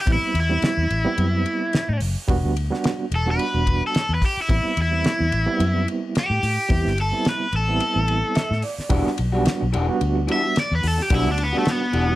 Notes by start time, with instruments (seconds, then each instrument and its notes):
0.00 overdriven electric guitar G4
0.06 fingered electric bass A1, reed electric piano G3 B3 C4 E4, kick, ride bell
0.13 overdriven electric guitar E4
0.22 muted fingered electric bass stroke
0.34 fingered electric bass E2, ride bell
0.40 overdriven electric guitar E4
0.50 reed electric piano G3 B3 C4 E4
0.62 muted fingered electric bass stroke, snare, ride bell
0.77 fingered electric bass E2
0.90 fingered electric bass A1, ride bell
1.05 reed electric piano G3 B3 C4 E4
1.18 fingered electric bass F#2, ride bell
1.46 ride bell
1.73 snare, ride bell
1.89 fingered electric bass A2
2.00 fingered electric bass F#1, open hi-hat
2.27 fingered electric bass E1, reed electric piano G3 B3 D4 F#4, kick, ride bell
2.44 fingered electric bass D2
2.57 ride bell
2.70 reed electric piano G3 B3 D4 F#4, snare
2.84 snare, ride bell
3.11 fingered electric bass E1, ride bell
3.15 overdriven electric guitar A4
3.26 reed electric piano G3 B3 D4 F#4
3.31 overdriven electric guitar B4
3.39 ride bell
3.54 fingered electric bass E1
3.67 kick, ride bell
3.87 overdriven electric guitar A4
3.94 snare, ride bell
4.09 fingered electric bass E2
4.14 overdriven electric guitar B4
4.22 overdriven electric guitar G4, kick, open hi-hat
4.37 muted fingered electric bass stroke
4.42 overdriven electric guitar E4
4.48 fingered electric bass A1, reed electric piano G3 B3 C4 E4, kick, ride bell
4.65 muted fingered electric bass stroke
4.77 fingered electric bass E2, ride bell
4.82 overdriven electric guitar E4
4.91 reed electric piano G3 B3 C4 E4
5.04 muted fingered electric bass stroke, snare, ride bell
5.20 fingered electric bass E2
5.32 fingered electric bass A1, ride bell
5.46 reed electric piano G3 B3 C4 E4
5.60 fingered electric bass F#2, ride bell
5.88 ride bell
6.15 overdriven electric guitar G4, snare, ride bell
6.30 fingered electric bass A2
6.43 fingered electric bass A2, open hi-hat
6.69 fingered electric bass E2, reed electric piano G3 B3 C4 E4, kick, ride bell
6.85 fingered electric bass G1, snare
6.98 overdriven electric guitar A4, ride bell
7.12 reed electric piano G3 B3 C4 E4
7.25 snare, ride bell
7.29 overdriven electric guitar B4
7.53 fingered electric bass A1, overdriven electric guitar A4, ride bell
7.68 reed electric piano G3 B3 C4 E4
7.80 ride bell
7.96 fingered electric bass A1
8.08 ride bell
8.35 reed electric piano E5, snare, ride bell
8.51 fingered electric bass A2, snare
8.62 reed electric piano D5, open hi-hat
8.78 muted fingered electric bass stroke, snare
8.90 fingered electric bass E1, clean electric guitar E3 G3 D4 F#4, reed electric piano G3 B3 D4 F#4, kick, ride bell
9.07 muted fingered electric bass stroke, snare
9.18 fingered electric bass B1, muted clean electric guitar stroke, ride bell
9.32 reed electric piano G3 B3 D4 F#4, clean electric guitar G3 D4 F#4
9.45 muted clean electric guitar stroke, muted fingered electric bass stroke, snare, ride bell
9.61 fingered electric bass B1, muted clean electric guitar stroke
9.73 fingered electric bass E1, clean electric guitar E3 G3 D4 F#4, ride bell
9.87 reed electric piano G3 B3 D4 F#4, muted clean electric guitar stroke
10.01 fingered electric bass D2, ride bell
10.15 muted clean electric guitar stroke
10.27 clean electric guitar E3 G3 D4 F#4, ride bell
10.32 overdriven electric guitar E5
10.43 muted clean electric guitar stroke
10.56 snare, ride bell
10.60 overdriven electric guitar D5
10.72 fingered electric bass E2, overdriven electric guitar B4
10.83 fingered electric bass E2, muted clean electric guitar stroke, open hi-hat
10.87 overdriven electric guitar A4
10.98 muted clean electric guitar stroke, snare
11.02 overdriven electric guitar G4
11.10 fingered electric bass B1, clean electric guitar E3 G3 D4 F#4, reed electric piano G3 B3 D4 F#4, kick, ride bell
11.15 overdriven electric guitar E4
11.27 fingered electric bass D2
11.31 overdriven electric guitar D4
11.37 muted clean electric guitar stroke, ride bell
11.43 overdriven electric guitar B3
11.53 reed electric piano G3 B3 D4 F#4, clean electric guitar G3 D4 F#4
11.58 overdriven electric guitar A3
11.65 muted clean electric guitar stroke, snare, ride bell
11.70 overdriven electric guitar B3
11.81 muted clean electric guitar stroke
11.93 fingered electric bass E1, clean electric guitar E3 G3 D4 F#4, ride bell
12.08 reed electric piano G3 B3 D4 F#4, muted clean electric guitar stroke